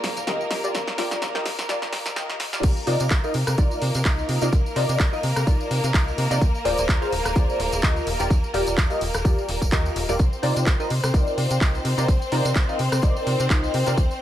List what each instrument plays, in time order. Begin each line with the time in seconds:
Already playing: violin section A#3 A#4, analog polysynth F4 G#4 C5 D5
0.04 fm bass D1, snare, open hi-hat
0.17 fm bass D1, closed hi-hat, tambourine
0.27 fm bass D2, analog polysynth F4 G4 A#4 D#5, snare, closed hi-hat, tambourine
0.41 tambourine
0.51 fm bass D#1, snare, open hi-hat
0.63 fm bass D#1, analog polysynth F4 G4 A#4 D5, closed hi-hat, tambourine
0.75 fm bass D#2, snare, closed hi-hat, tambourine
0.87 snare, tambourine
0.98 fm bass D#1, analog polysynth F4 G4 A#4 D5, snare, open hi-hat
1.11 fm bass D#1, snare, closed hi-hat, tambourine
1.22 fm bass D#2, snare, closed hi-hat, tambourine
1.34 analog polysynth F4 G4 A#4 D#5, snare, tambourine
1.45 fm bass D#1, snare, open hi-hat
1.59 fm bass D#1, snare, closed hi-hat, tambourine
1.68 fm bass D#2, analog polysynth F4 G4 A#4 D5, snare, closed hi-hat, tambourine
1.82 snare, closed hi-hat, tambourine
1.93 fm bass D#1, snare, open hi-hat
2.06 fm bass D#1, snare, closed hi-hat, tambourine
2.16 fm bass D#2, analog polysynth F4 G4 A#4 D#5, snare, closed hi-hat, tambourine
2.30 snare, closed hi-hat, tambourine
2.40 fm bass D#1, snare, open hi-hat
2.53 fm bass D#1, analog polysynth F4 G4 A#4 D5, snare, closed hi-hat, tambourine
2.63 fm bass C2, violin section A#3 A#4, kick, closed hi-hat, crash, tambourine
2.76 tambourine
2.87 fm bass C3, analog polysynth D#4 F4 A#4 D5, open hi-hat
3.00 fm bass C3, closed hi-hat, tambourine
3.10 fm bass C2, kick, clap, closed hi-hat, tambourine
3.24 analog polysynth D#4 F4 A#4 D#5, tambourine
3.34 fm bass C3, open hi-hat
3.47 fm bass C3, cross-stick, closed hi-hat, tambourine
3.58 fm bass C2, analog polysynth D#4 F4 A#4 D5, kick, closed hi-hat, tambourine
3.71 tambourine
3.82 fm bass C3, open hi-hat
3.94 fm bass C3, closed hi-hat, tambourine
4.05 fm bass C2, analog polysynth D#4 F4 A#4 D#5, kick, clap, closed hi-hat, tambourine
4.18 tambourine
4.29 fm bass C3, open hi-hat
4.41 fm bass C3, analog polysynth D#4 F4 A#4 D5, closed hi-hat, tambourine
4.52 fm bass C2, kick, closed hi-hat, tambourine
4.66 tambourine
4.76 fm bass C3, analog polysynth D#4 F4 A#4 D5, open hi-hat
4.89 fm bass C3, closed hi-hat, tambourine
4.99 fm bass C2, kick, clap, closed hi-hat, tambourine
5.12 analog polysynth D#4 F4 A#4 D#5, tambourine
5.23 fm bass C3, open hi-hat
5.36 fm bass C3, cross-stick, closed hi-hat, tambourine
5.47 fm bass C2, analog polysynth D#4 F4 A#4 D5, kick, closed hi-hat, tambourine
5.60 tambourine
5.71 fm bass C3, open hi-hat
5.84 fm bass C3, closed hi-hat, tambourine
5.94 fm bass C2, analog polysynth D#4 F4 A#4 D#5, kick, clap, closed hi-hat, tambourine
6.08 tambourine
6.18 fm bass C3, open hi-hat
6.31 fm bass C3, analog polysynth D#4 F4 A#4 D5, closed hi-hat, tambourine
6.41 fm bass D2, kick, closed hi-hat, tambourine
6.54 tambourine
6.65 fm bass D1, analog polysynth F4 G#4 C5 D5, open hi-hat
6.77 fm bass D1, closed hi-hat, tambourine
6.88 fm bass D2, kick, clap, closed hi-hat, tambourine
7.01 analog polysynth F4 G#4 C5 F5, tambourine
7.12 fm bass D1, open hi-hat
7.25 fm bass D1, cross-stick, closed hi-hat, tambourine
7.35 fm bass D2, analog polysynth F4 G#4 C5 D5, kick, closed hi-hat, tambourine
7.49 tambourine
7.60 fm bass D1, open hi-hat
7.72 fm bass D1, closed hi-hat, tambourine
7.82 fm bass D2, analog polysynth F4 G4 A#4 D#5, kick, clap, closed hi-hat, tambourine
7.84 tambourine
7.96 tambourine
8.07 fm bass D#1, open hi-hat
8.19 fm bass D#1, analog polysynth F4 G4 A#4 D5, closed hi-hat, tambourine
8.30 fm bass D#2, kick, closed hi-hat, tambourine
8.44 tambourine
8.54 fm bass D#1, analog polysynth F4 G4 A#4 D5, open hi-hat
8.67 fm bass D#1, closed hi-hat, tambourine
8.78 fm bass D#2, kick, clap, closed hi-hat, tambourine
8.90 analog polysynth F4 G4 A#4 D#5, closed hi-hat, tambourine
9.01 fm bass D#1, open hi-hat
9.14 fm bass D#1, cross-stick, closed hi-hat, tambourine
9.24 fm bass D#2, analog polysynth F4 G4 A#4 D5, kick, closed hi-hat, tambourine
9.38 tambourine
9.49 fm bass D#1, open hi-hat
9.62 fm bass D#1, kick, closed hi-hat, tambourine
9.72 fm bass D#2, analog polysynth F4 G4 A#4 D#5, kick, clap, closed hi-hat, tambourine
9.86 tambourine
9.96 fm bass D#1, open hi-hat
10.09 fm bass D#1, analog polysynth F4 G4 A#4 D5, closed hi-hat, tambourine
10.19 fm bass C2, violin section C4 C5, kick, closed hi-hat, tambourine
10.33 tambourine
10.42 fm bass C3, analog polysynth D#4 F4 A#4 D5, open hi-hat
10.56 fm bass C3, closed hi-hat, tambourine
10.66 fm bass C2, kick, clap, closed hi-hat, tambourine
10.79 analog polysynth D#4 F4 A#4 D#5, tambourine
10.90 fm bass C3, open hi-hat
11.04 fm bass C3, cross-stick, closed hi-hat, tambourine
11.14 fm bass C2, analog polysynth D#4 F4 A#4 D5, kick, closed hi-hat, tambourine
11.27 tambourine
11.38 fm bass C3, open hi-hat
11.50 fm bass C3, closed hi-hat, tambourine
11.61 fm bass C2, analog polysynth D#4 F4 A#4 D#5, kick, clap, closed hi-hat, tambourine
11.74 tambourine
11.85 fm bass C3, open hi-hat
11.97 fm bass C3, analog polysynth D#4 F4 A#4 D5, closed hi-hat, tambourine
12.08 fm bass C2, kick, closed hi-hat, tambourine
12.22 tambourine
12.32 fm bass C3, analog polysynth D#4 F4 A#4 D5, open hi-hat
12.45 fm bass C3, closed hi-hat, tambourine
12.55 fm bass C2, kick, clap, closed hi-hat, tambourine
12.68 analog polysynth D#4 F4 A#4 D#5, tambourine
12.79 fm bass C3, open hi-hat
12.92 fm bass C3, cross-stick, closed hi-hat, tambourine
13.02 fm bass C2, analog polysynth D#4 F4 A#4 D5, kick, closed hi-hat, tambourine
13.16 tambourine
13.27 fm bass C3, open hi-hat
13.40 fm bass C3, closed hi-hat, tambourine
13.50 fm bass C2, analog polysynth D#4 F4 A#4 D#5, kick, clap, closed hi-hat, tambourine
13.63 tambourine
13.74 fm bass C3, open hi-hat
13.86 fm bass C3, analog polysynth D#4 F4 A#4 D5, closed hi-hat, tambourine
13.97 fm bass D2, kick, closed hi-hat, tambourine
14.11 tambourine